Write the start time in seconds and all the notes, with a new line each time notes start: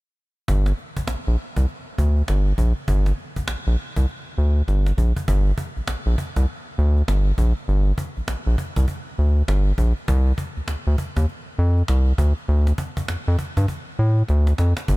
0.48 G1, cajon bass
0.66 cajon slap
0.78 cajon slap
0.97 A#1, cajon bass
1.08 A#1, cajon slap
1.27 A#1
1.38 cajon slap
1.56 C2, cajon bass
1.68 cajon slap
1.98 D2, cajon bass
2.17 cajon slap
2.28 G1, cajon slap
2.58 A#1, cajon bass
2.76 cajon slap
2.88 G1, cajon bass
3.06 cajon slap
3.18 cajon slap
3.36 A#1, cajon bass
3.48 A#1, cajon slap
3.67 A#1
3.78 cajon slap
3.96 C2, cajon bass
4.08 cajon slap
4.38 D2, cajon slap
4.56 cajon slap
4.68 G1, cajon slap
4.86 cajon slap
4.98 A#1, cajon bass
5.16 cajon bass
5.28 G1, cajon bass
5.58 cajon bass
5.76 A#1, cajon slap
5.88 A#1, cajon slap
6.06 A#1
6.18 cajon bass
6.36 C2, cajon bass, cajon slap
6.48 cajon slap
6.78 D2, cajon slap
6.97 cajon slap
7.08 G1, cajon slap
7.38 A#1, cajon bass
7.57 cajon slap
7.68 G1, cajon slap
7.98 cajon bass
8.17 A#1, cajon slap
8.28 A#1, cajon slap
8.47 A#1
8.58 cajon bass
8.76 C2, cajon bass, cajon slap
8.88 cajon bass
9.18 D2, cajon slap
9.37 cajon slap
9.48 G1, cajon slap
9.78 A#1, cajon bass
9.97 cajon slap
10.08 C2, cajon bass
10.38 cajon bass
10.57 D2, cajon slap
10.68 D2, cajon slap
10.87 D2
10.98 cajon bass
11.16 D#2, cajon bass, cajon slap
11.28 cajon slap
11.59 F2, cajon slap
11.77 cajon slap
11.88 C2, cajon slap
12.18 D2, cajon bass
12.37 cajon slap
12.48 D2, cajon slap
12.67 cajon slap
12.78 cajon bass
12.97 F2, cajon bass
13.08 F2, cajon slap
13.28 F2
13.39 cajon bass
13.57 G2, cajon bass
13.68 cajon bass
13.99 A2, cajon slap
14.17 cajon slap
14.28 D2, cajon slap
14.47 cajon slap
14.58 F2, cajon slap
14.77 cajon slap
14.88 G1, cajon bass